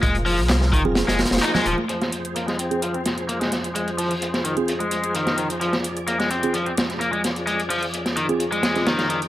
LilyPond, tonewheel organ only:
<<
  \new Staff \with { instrumentName = "Tonewheel organ" } { \time 4/4 \key c \dorian \tempo 4 = 129 bes'1 | c''1~ | c''1 | d''1~ |
d''1 | }
  \new Staff \with { instrumentName = "Tonewheel organ" } { \time 4/4 \key c \dorian <f f' aes'>1 | <f, f aes'>1~ | <f, f aes'>1~ | <f, f aes'>1~ |
<f, f aes'>1 | }
>>